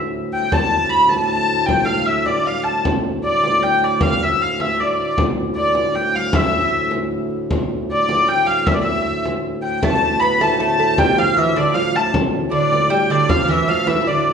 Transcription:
Already playing: D2 A2
0.33 G5, frame drum
0.50 D2 A2 A5, frame drum
0.90 B5, frame drum
1.09 A5, frame drum
1.27 A5, frame drum
1.49 frame drum
1.66 G5, frame drum
1.85 F5
2.05 E5, frame drum
2.26 D5, frame drum
2.46 F5, frame drum
2.64 A5, frame drum
2.85 frame drum
3.24 D5, frame drum
3.43 frame drum
3.63 G5, frame drum
3.84 D5
4.01 F5, frame drum
4.21 E5, frame drum
4.41 F5
4.60 E5, frame drum
4.80 D5, frame drum
4.99 frame drum
5.17 D2 A2, frame drum
5.56 D5, frame drum
5.75 frame drum
5.94 G5, frame drum
6.14 F5, frame drum
6.33 E5, frame drum
6.72 frame drum
6.91 frame drum
7.11 frame drum
7.30 frame drum
7.51 frame drum
7.89 D5, frame drum
8.09 frame drum
8.28 G5, frame drum
8.47 F5, frame drum
8.66 E5, frame drum
8.74 D5
8.82 E5
9.05 frame drum
9.25 frame drum
9.45 frame drum
9.63 G5
9.82 D2 A2 A3 A5, frame drum
10.20 B3 B5, frame drum
10.41 A3 A5, frame drum
10.59 A3 A5, frame drum
10.80 A3, frame drum
10.98 G3 G5, frame drum
11.18 F3 F5
11.37 E3 E5, frame drum
11.56 D3 D5, frame drum
11.74 F3 F5, frame drum
11.95 A3 A5, frame drum
12.14 frame drum
12.51 D3 D5, frame drum
12.72 frame drum
12.90 G3 G5, frame drum
13.10 D3 D5, frame drum
13.29 F3 F5, frame drum
13.44 F3
13.48 E3 E5
13.68 F3 F5
13.87 E3 E5, frame drum
14.02 E3
14.06 D3 D5, frame drum
14.26 frame drum

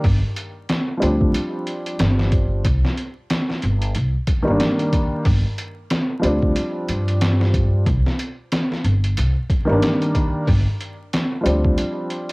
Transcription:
0.04 G1, kick, open hi-hat
0.36 closed hi-hat
0.69 snare, closed hi-hat
0.97 F3 G3
1.02 D2 C4 D4, closed hi-hat
1.21 kick
1.34 closed hi-hat
1.67 closed hi-hat
1.86 closed hi-hat
1.99 G1, snare, closed hi-hat
2.19 snare
2.32 kick, closed hi-hat
2.65 C2, kick, closed hi-hat
2.85 snare
2.97 closed hi-hat
3.30 snare, closed hi-hat
3.50 snare
3.62 G1, closed hi-hat
3.82 closed hi-hat
3.95 C2, closed hi-hat
4.27 kick, closed hi-hat
4.43 D#3 G3
4.47 G1 A#3 D4
4.60 snare, closed hi-hat
4.79 closed hi-hat
4.93 kick, closed hi-hat
5.25 G1, kick, open hi-hat
5.58 closed hi-hat
5.90 snare, closed hi-hat
6.19 D2 F3 G3, closed hi-hat
6.24 C4 D4
6.42 kick
6.56 closed hi-hat
6.89 G2, closed hi-hat
7.08 closed hi-hat
7.21 snare, closed hi-hat
7.41 snare
7.54 kick, closed hi-hat
7.86 C2, kick, closed hi-hat
8.06 snare
8.19 closed hi-hat
8.52 snare, closed hi-hat
8.72 snare
8.84 G1, closed hi-hat
9.04 closed hi-hat
9.17 C2, closed hi-hat
9.50 kick, closed hi-hat
9.65 D#3 G3
9.69 G1 A#3 D4
9.82 snare, closed hi-hat
10.02 closed hi-hat
10.15 kick, closed hi-hat
10.47 G1, kick, open hi-hat
10.81 closed hi-hat
11.13 snare, closed hi-hat
11.41 F3 G3
11.46 D2 C4 D4, closed hi-hat
11.65 kick
11.78 closed hi-hat
12.10 closed hi-hat
12.29 closed hi-hat

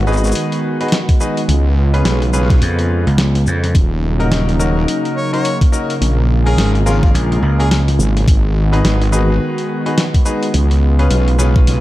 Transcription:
Already playing: G#1 D#3 G#3 B3 F#4
0.07 D#4 F#4 G#4 B4, shaker
0.13 shaker
0.17 shaker
0.24 shaker
0.26 shaker
0.32 closed hi-hat, shaker
0.52 closed hi-hat
0.80 D#4 F#4 G#4 B4, closed hi-hat
0.88 snare, closed hi-hat
0.92 closed hi-hat
0.98 closed hi-hat
1.09 kick, closed hi-hat
1.20 D#4 F#4 G#4 B4, shaker
1.37 closed hi-hat
1.48 C#2 C#3 B3 F4, closed hi-hat
1.94 C#4 F4 G#4 B4, closed hi-hat
2.05 B1, snare, closed hi-hat
2.22 closed hi-hat
2.33 C#4 F4 G#4 B4, snare, shaker
2.42 snare
2.50 kick, snare, closed hi-hat
2.56 snare
2.62 F2, closed hi-hat
2.79 closed hi-hat
3.07 C#2, closed hi-hat
3.18 snare, closed hi-hat
3.35 snare, closed hi-hat
3.47 F2, shaker
3.64 snare, closed hi-hat
3.74 D#1 F#3 A#3 D#4, kick, closed hi-hat
4.20 C#4 D#4 F#4 A#4, closed hi-hat
4.31 D#1, snare, closed hi-hat
4.49 closed hi-hat
4.59 C#4 D#4 F#4 A#4, shaker
4.88 closed hi-hat
5.05 closed hi-hat
5.16 C#5
5.33 C#4 D#4 F#4 A#4 C#5, closed hi-hat
5.45 closed hi-hat
5.61 kick, closed hi-hat
5.72 C#4 D#4 F#4 A#4, shaker
5.90 closed hi-hat
6.01 A#1 G#3 F4, closed hi-hat
6.46 C#4 F4 G#4 A#4, closed hi-hat
6.57 G#1, snare, closed hi-hat
6.75 closed hi-hat
6.86 C#4 F4 G#4 A#4, snare, shaker
7.03 F4, kick, snare
7.14 A#1, closed hi-hat
7.32 closed hi-hat
7.42 C#2
7.59 C#4 F4 G#4 A#4, closed hi-hat
7.71 G#4, snare, closed hi-hat
7.88 snare, closed hi-hat
7.99 G#1, shaker
8.17 snare, closed hi-hat
8.27 G#1 D#3 G#3 B3 F#4, kick, closed hi-hat
8.73 D#4 F#4 G#4 B4, closed hi-hat
8.84 G#1, snare, closed hi-hat
9.02 closed hi-hat
9.12 D#4 F#4 G#4 B4, shaker
9.58 closed hi-hat
9.86 D#4 F#4 G#4 B4, closed hi-hat
9.98 snare, closed hi-hat
10.14 kick, closed hi-hat
10.25 D#4 F#4 G#4 B4, shaker
10.43 closed hi-hat
10.54 C#2 C#3 F4, closed hi-hat
10.71 closed hi-hat
10.99 C#4 F4 G#4 B4, closed hi-hat
11.11 B1, closed hi-hat
11.28 closed hi-hat
11.38 C#4 F4 G#4 B4, snare, shaker
11.56 kick, snare
11.67 B1, closed hi-hat

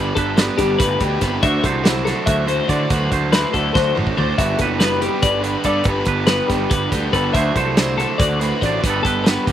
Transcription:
Already playing: G1 G2 G3 B3 D4 G4 B4
0.15 G1 A4 B4, kick, closed hi-hat
0.37 G3 B3 D4 G4 B4, snare, closed hi-hat
0.58 G1 G3 D4 G4 B4, kick, closed hi-hat
0.78 G1 A2 B4, kick, snare, closed hi-hat
1.00 D2 B2 D4 G4 B4, kick, closed hi-hat
1.21 G1 C3 B3 D4 G4 B4, kick, snare, closed hi-hat
1.41 D2 D3 F#3 A3 D4 F#4 C5 E5, kick, closed hi-hat
1.63 C2 A4 C5, kick, closed hi-hat
1.84 D3 F#3 A3 D4 E4 F#4 C5, snare, closed hi-hat
2.05 A3 D4 F#4 A4 C5, snare, closed hi-hat
2.26 D2 F#4 E5, kick, closed hi-hat
2.47 A2 A3 D4 F#4 C5, closed hi-hat
2.68 D3 A3 D4 F#4 C5 D5, kick, closed hi-hat
2.90 D2 D3 F#3 A3 D4 F#4 B4 C5, kick, closed hi-hat
3.11 D2 A4 C5, kick, closed hi-hat
3.32 D3 F#3 A3 D4 E4 F#4 B4 C5, snare, closed hi-hat
3.52 D2 A3 D4 F#4 A4 C5, kick, closed hi-hat
3.74 D2 F#4 C5, kick, snare
3.95 A1 A2 A3 D4 F#4 A4 C5, mid tom
4.07 kick
4.16 D2 A3 D4 F#4 C5 D5, floor tom
4.38 G1 G2 G3 B3 D4 F#4 G4 B4 E5, kick, closed hi-hat
4.58 F#1 A4 B4, kick, closed hi-hat
4.80 G3 B3 D4 G4 B4, snare, closed hi-hat
5.01 G3 D4 G4 B4, closed hi-hat
5.22 G1 D5, kick, closed hi-hat
5.42 D3 D4 G4 B4, closed hi-hat
5.64 G2 B3 D4 G4 A4 B4 D5, kick, closed hi-hat
5.84 G1 G2 G3 B3 B4, kick, closed hi-hat
5.88 D4 G4 B4
6.05 G1 A4 B4, kick, closed hi-hat
6.27 G3 B3 D4 G4 B4, snare, closed hi-hat
6.47 G1 G3 G4 B4, kick, snare, closed hi-hat
6.51 D4
6.70 G1 B4, kick, closed hi-hat
6.89 D2 D3 G4 B4, kick, snare, closed hi-hat
6.94 D4
7.13 G1 B3 D4 G4 A4 B4, kick, closed hi-hat
7.33 D2 D3 F#3 A3 D4 E4 F#4 C5 E5, kick, closed hi-hat
7.56 C2 A4 C5, kick, closed hi-hat
7.77 D3 F#3 A3 D4 E4 F#4 C5, snare, closed hi-hat
7.97 A3 D4 F#4 A4 C5, closed hi-hat
8.18 D2 F#4 D5, kick, closed hi-hat
8.39 A2 A3 D4 F#4 B4 C5, closed hi-hat
8.61 A1 A3 D4 F#4 C5 D5, kick, closed hi-hat
8.66 D5
8.82 G1 G3 B3 D4 G4 B4, kick, closed hi-hat
8.86 G2 G3 B3 A4
9.03 G1 A4 B4, kick, closed hi-hat
9.24 G3 B3 D4 G4 B4, snare, closed hi-hat
9.44 G1 G4 B4, kick, closed hi-hat
9.49 G3 D4

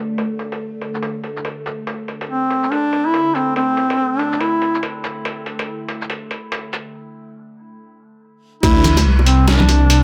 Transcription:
Already playing: D3 A3
0.18 closed hi-hat
0.39 closed hi-hat
0.52 closed hi-hat
0.81 closed hi-hat
0.94 shaker
1.03 closed hi-hat
1.24 closed hi-hat
1.37 shaker
1.45 closed hi-hat
1.66 closed hi-hat, shaker
1.87 closed hi-hat
2.08 closed hi-hat
2.21 closed hi-hat
2.29 C4
2.51 closed hi-hat
2.63 shaker
2.72 D4, closed hi-hat
2.93 closed hi-hat
3.06 E4
3.14 closed hi-hat
3.35 C4, closed hi-hat, shaker
3.56 C4, closed hi-hat
3.77 closed hi-hat
3.90 closed hi-hat
4.19 D4, closed hi-hat
4.32 shaker
4.40 E4, closed hi-hat
4.62 closed hi-hat
4.75 shaker
4.83 closed hi-hat
5.04 closed hi-hat, shaker
5.25 closed hi-hat
5.46 closed hi-hat
5.59 closed hi-hat
5.88 closed hi-hat
6.01 shaker
6.10 closed hi-hat
6.31 closed hi-hat
6.52 closed hi-hat
6.73 closed hi-hat, shaker
8.63 D2 D3 A3 E4, kick, closed hi-hat, crash, high bongo
8.84 closed hi-hat, low conga, shaker
8.97 closed hi-hat, high bongo, high conga
9.05 C2
9.19 high bongo
9.26 C4, closed hi-hat
9.48 D4, snare, closed hi-hat, high bongo
9.60 high conga, low conga
9.69 closed hi-hat, high bongo
9.90 closed hi-hat

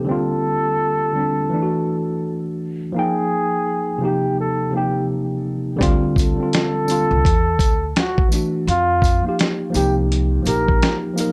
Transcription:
Already playing: C3 F3 A#3 C4 D4 D#4 G4 A4 C5
0.05 D3 G3
0.09 C4 F4 A4
1.13 D3 G3
1.17 C4 D4
1.50 E3 A3
1.54 D4 E4
1.63 F#4
2.92 F3 A#3
2.96 D#4 G#4 G5
3.98 C3 F3 A#3
4.04 D#4 G4
4.40 A4
4.71 C3 F3 A#3
4.76 D#4 G4
5.76 D3 G3
5.81 D2 C4 F4, kick, closed hi-hat
6.16 A4, kick, closed hi-hat, tambourine
6.36 D3 G3
6.40 C4 F4
6.53 snare, closed hi-hat
6.85 D3 G3, tambourine
6.89 C4 F4, closed hi-hat
7.11 C2
7.25 E2, kick, closed hi-hat
7.59 D2, kick, closed hi-hat, tambourine
7.96 F#4, snare, closed hi-hat
8.18 kick
8.28 E3 A3, tambourine
8.33 D4 F#4, closed hi-hat
8.67 F2 F4, closed hi-hat
9.02 kick, closed hi-hat, tambourine
9.22 F3 A#3
9.27 D#4 F4 G4
9.39 snare, closed hi-hat
9.70 F3 A#3
9.74 C2 D#4 G4, closed hi-hat, tambourine
10.12 closed hi-hat
10.42 F3 A#3, tambourine
10.46 A#1 D#4 G4 A#4, closed hi-hat
10.68 kick
10.82 snare, closed hi-hat
11.14 F3 A#3, tambourine
11.19 D#4 A#4, closed hi-hat

